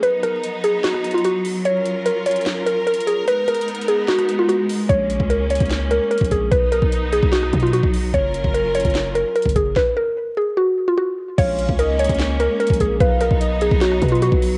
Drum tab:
CC |------------------------------------------------------------------------------------------------|------------------------------------------------------------------------------------------------|------------------------------------------------------------------------------------------------|------------------------------------------------------------------------------------------------|
HH |x-----------x-----------x-----------x-----------x-----------x---x---x---x-----------o-----------|x-----------x-----------x-----------x--x--x--x--x-----------x-----------x---x---x---x-----------|x-----------x---x---x---x---x---x---x-----------x-----x-----x-----------x-----------o-----------|x-----------x-----------x-----------x--x--x--x--x-----------x-----------x---x---x---x-----------|
CP |------------------------------------------------x-----------------------------------------------|------------------------------------------------x-----------------------------------------------|------------------------------------------------x-----------------------------------------------|------------------------------------------------x-----------------------------------------------|
SD |------------r-----------------------------------o-----r-----------------------------------------|------------------------------------------------o-----------------------------------------------|------------r-----------------------------------o-----r-----------------------------------------|------------------------------------------------o-----------------------------------------------|
BD |------------------------------------------------------------------------------------------------|------------------------------------------------------------------------------------------------|------------------------------------------------------------------------------------------------|o-----------------o-----------------------o-----------------------------------o-----o-----------|

CC |------------------------------------------------------------------------------------------------|------------------------------------------------------------------------------------------------|------------------------------------------------------------------------------------------------|x-----------------------------------------------------------------------------------------------|
HH |x-----------x-----------x-----------x-----------x-----------x---x---x---x-----------o-----------|x-----------x-----------x-----------x--x--x--x--x-----------x-----------x---x---x---x-----------|------------------------------------------------------------------------------------------------|x-----------x-----------x-----------x--x--x--x--x-----------x-----------x---x---x---x-----------|
CP |------------------------------------------------x-----------------------------------------------|------------------------------------------------x-----------------------------------------------|------------------------------------------------------------------------------------------------|------------------------------------------------x-----------------------------------------------|
SD |------------r-----------------------------------o-----r-----------------------------------------|------------------------------------------------o-----------------------------------------------|o-----------------------------------------------------------------------------------------------|------------------------------------------------o-----------------------------------------------|
BD |o-----------------o-----------------------o-----------------o-----------------o-----------------|o-----------------o-----------------------o-----------------------------------o-----o-----------|o-----------------------------------------------------------------------------------------------|o-----------------o-----------------------o-----------------------------------o-----o-----------|

CC |------------------------------------------------------------------------------------------------|
HH |x-----------x-----------x-----------x-----------x-----------x---x---x---x-----------o-----------|
CP |------------------------------------------------x-----------------------------------------------|
SD |------------r-----------------------------------o-----r-----------------------------------------|
BD |o-----------------o-----------------------o-----------------o-----------------o-----------------|